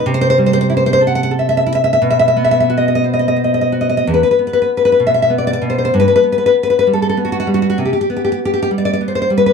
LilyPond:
\new Staff \with { instrumentName = "Nylon-string guitar" } { \time 3/4 \key e \minor \tempo 4 = 96 << { r32 c''32 c''32 c''32 r32 c''32 c''32 c''32 r32 c''32 c''32 c''32 r32 fis''32 fis''32 fis''32 r32 e''32 e''32 e''32 r32 e''32 e''32 e''32 | r32 e''32 e''32 e''32 r32 e''32 e''32 e''32 r32 dis''32 dis''32 dis''32 r32 dis''32 dis''32 dis''32 r32 dis''32 dis''32 dis''32 r32 dis''32 dis''32 dis''32 | r32 b'32 b'32 b'32 r32 b'32 b'32 b'32 r32 b'32 b'32 b'32 r32 e''32 e''32 e''32 r32 d''32 d''32 d''32 r32 c''32 c''32 c''32 | r32 b'32 b'32 b'32 r32 b'32 b'32 b'32 r32 b'32 b'32 b'32 r32 a'32 a'32 a'32 r32 fis'32 fis'32 fis'32 r32 fis'32 fis'32 fis'32 |
r32 g'32 g'32 g'32 r32 g'32 g'32 g'32 r32 g'32 g'32 g'32 r32 d''32 d''32 d''32 r32 c''32 c''32 c''32 r32 b'32 b'32 r32 | } \\ { c8 g8 e'8 a'8 a'8 e'8 | b,8 b8 fis'8 c''8 c''8 fis'8 | e,16 r16 b4 b,8 b8 b,8 | g,16 r16 b4 g8 b8 g8 |
c16 r16 b4 g8 b8 g8 | } >> }